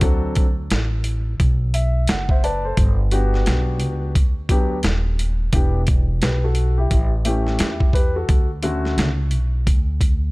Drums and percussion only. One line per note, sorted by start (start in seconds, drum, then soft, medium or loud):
0.01 kick loud
0.01 closed hi-hat medium
0.35 kick medium
0.35 closed hi-hat medium
0.70 snare loud
0.70 closed hi-hat medium
1.04 closed hi-hat medium
1.40 kick medium
1.40 closed hi-hat medium
1.74 closed hi-hat medium
2.07 snare loud
2.07 closed hi-hat medium
2.29 kick medium
2.44 closed hi-hat medium
2.77 kick loud
2.77 closed hi-hat medium
3.11 closed hi-hat medium
3.34 snare soft
3.46 snare loud
3.46 closed hi-hat medium
3.80 closed hi-hat medium
4.15 kick medium
4.15 closed hi-hat medium
4.49 kick medium
4.49 closed hi-hat medium
4.83 snare loud
4.83 closed hi-hat medium
5.19 closed hi-hat medium
5.53 kick loud
5.53 closed hi-hat medium
5.87 kick loud
5.87 closed hi-hat medium
6.22 snare loud
6.22 closed hi-hat medium
6.55 closed hi-hat medium
6.91 kick medium
6.91 closed hi-hat medium
7.25 closed hi-hat medium
7.47 snare soft
7.59 snare loud
7.59 closed hi-hat medium
7.80 kick medium
7.93 kick medium
7.93 closed hi-hat medium
8.29 kick loud
8.29 closed hi-hat medium
8.63 closed hi-hat medium
8.85 snare soft
8.98 snare medium
8.98 closed hi-hat medium
9.31 closed hi-hat medium
9.67 kick loud
9.67 closed hi-hat medium
10.01 kick medium
10.01 closed hi-hat medium